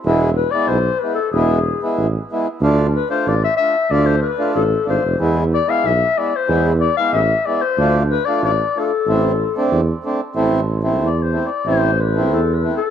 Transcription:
<<
  \new Staff \with { instrumentName = "Clarinet" } { \time 2/4 \key a \minor \tempo 4 = 93 r8 b'16 d''16 c''8 b'16 a'16 | gis'4 r4 | r8 b'16 c''16 d''16 e''16 e''8 | d''16 c''16 b'8 a'8 c''8 |
r8 d''16 f''16 e''8 d''16 c''16~ | c''16 r16 d''16 f''16 e''8 d''16 c''16~ | c''16 r16 b'16 d''16 d''8 a'8~ | a'4 r4 |
r4 \tuplet 3/2 { d''8 c''8 d''8 } | c''8 b'8 \tuplet 3/2 { a'8 b'8 a'8 } | }
  \new Staff \with { instrumentName = "Accordion" } { \time 2/4 \key a \minor <gis b e'>8 r16 <gis b e'>16 r8 <gis b e'>16 r16 | <gis b e'>8 r16 <gis b e'>16 r8 <gis b e'>16 r16 | <a d' f'>8 r16 <a d' f'>16 r8 <a d' f'>16 r16 | <a d' f'>8 r16 <a d' f'>16 r8 <a d' f'>16 r16 |
<gis b e'>8 r16 <gis b e'>16 r8 <gis b e'>16 r16 | <gis b e'>8 r16 <gis b e'>16 r8 <gis b e'>16 r16 | <a d' f'>8 r16 <a d' f'>16 r8 <a d' f'>16 r16 | <a c' e'>8 r16 <a c' d'>16 r8 <a c' d'>16 r16 |
<a c' e'>8 r16 <a c' e'>16 r8 <a c' e'>16 r16 | <a c' e'>8 r16 <a c' e'>16 r8 <a c' e'>16 r16 | }
  \new Staff \with { instrumentName = "Tuba" } { \clef bass \time 2/4 \key a \minor e,,4 b,,8 r8 | e,,4 a,,8 r8 | d,4 a,,8 r8 | d,4 a,,8 gis,,16 f,,16 |
e,4 b,,8 r8 | e,4 a,,8 r8 | d,4 a,,8 r8 | a,,4 e,8 r8 |
a,,4 e,4 | a,,4 e,4 | }
>>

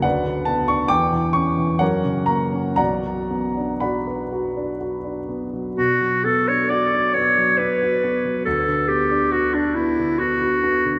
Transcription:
<<
  \new Staff \with { instrumentName = "Clarinet" } { \time 3/4 \key b \minor \tempo 4 = 67 r2. | r2. | fis'8 a'16 cis''16 d''8 cis''8 b'4 | a'8 g'8 fis'16 d'16 e'8 fis'4 | }
  \new Staff \with { instrumentName = "Grand piano" } { \time 3/4 \key b \minor <b' d'' fis''>8 a''16 cis'''16 <g'' d'''>8 cis'''8 <ais' cis'' fis''>8 ais''8 | <d'' fis'' ais''>4 <d'' fis'' b''>4 r4 | r2. | r2. | }
  \new Staff \with { instrumentName = "Grand piano" } { \time 3/4 \key b \minor d,16 d16 b16 d'16 e,16 e16 cis'16 e16 fis,16 cis16 ais16 cis'16 | <b,, b,>16 fis16 b16 d'16 fis'16 b'16 fis'16 d'16 fis'16 d'16 b16 fis16 | b,16 fis16 b16 d'16 fis'16 d'16 b16 fis16 b16 fis'16 b16 fis16 | d,16 d16 b16 d'16 fis'16 d'16 b16 d16 b16 fis'16 b16 d16 | }
>>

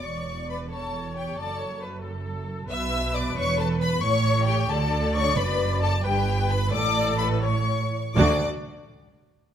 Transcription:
<<
  \new Staff \with { instrumentName = "Violin section" } { \time 6/8 \key d \major \tempo 4. = 89 cis'''4 b''8 a''4 g''8 | a''4 r2 | e'''4 d'''8 cis'''8 a''8 b''8 | cis'''4 g''8 a''4 cis'''8 |
b''4 a''8 g''4 b''8 | d'''4 b''8 cis'''4. | d'''8 r2 r8 | }
  \new Staff \with { instrumentName = "Viola section" } { \time 6/8 \key d \major d''4. cis''4. | d''8 cis''8 b'8 a'4. | b'2. | cis''4. d''4.~ |
d''4. b'4. | a'4. cis''8. r8. | <d' fis'>8 r2 r8 | }
  \new Staff \with { instrumentName = "Violin section" } { \time 6/8 \key d \major cis''4 b'8 a'4 g'8 | a'4 r2 | e''4 d''8 cis''8 a'8 b'8 | cis''4 g'8 a'4 cis''8 |
b'4 a'8 g'4 b'8 | d''4 b'8 cis''4. | d''8 r2 r8 | }
  \new Staff \with { instrumentName = "Cello section" } { \clef bass \time 6/8 \key d \major e,2. | fis,2. | b,4. e,4. | a,4. d4. |
fis,4. g,4. | a,2~ a,8 r8 | d,8 r2 r8 | }
  \new Staff \with { instrumentName = "Double bass section" } { \clef bass \time 6/8 \key d \major e,,2. | fis,,2. | b,,4. e,,4. | a,,4. d,4. |
fis,,4. g,,4. | a,,2~ a,,8 r8 | d,8 r2 r8 | }
>>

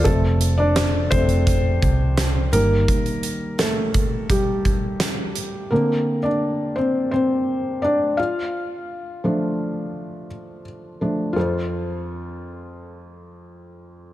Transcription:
<<
  \new Staff \with { instrumentName = "Felt piano" } { \time 4/4 \key f \mixolydian \tempo 4 = 85 a'8. <d' d''>8. <c' c''>2 bes'8~ | bes'4 <a a'>4 <g g'>4. r8 | bes'8. <d' d''>8. <c' c''>8 <c' c''>4 <d' d''>8 <f' f''>8~ | <f' f''>2. r4 |
<f' a' c''>1 | }
  \new Staff \with { instrumentName = "Felt piano" } { \clef bass \time 4/4 \key f \mixolydian <c f a>4. <c f a>8 r4. <ees g bes>8~ | <ees g bes>4 r2. | <d bes c'>8 r2. r8 | r4 <f a d'>4. r4 <f a d'>8 |
f,1 | }
  \new Staff \with { instrumentName = "Fingered electric bass" } { \clef bass \time 4/4 \key f \mixolydian f,,4. f,,4 c,4 g,,8 | r1 | r1 | r1 |
r1 | }
  \new DrumStaff \with { instrumentName = "Drums" } \drummode { \time 4/4 <hh bd>8 hh8 <hh sn>8 <hh bd>16 hh16 <hh bd>8 <hh bd>8 <hh sn>8 hh8 | <hh bd>16 hh16 hh8 <hh sn>8 <hh bd>8 <hh bd>8 <hh bd>8 <hh sn>8 hh8 | r4 r4 r4 r4 | r4 r4 r4 r4 |
r4 r4 r4 r4 | }
>>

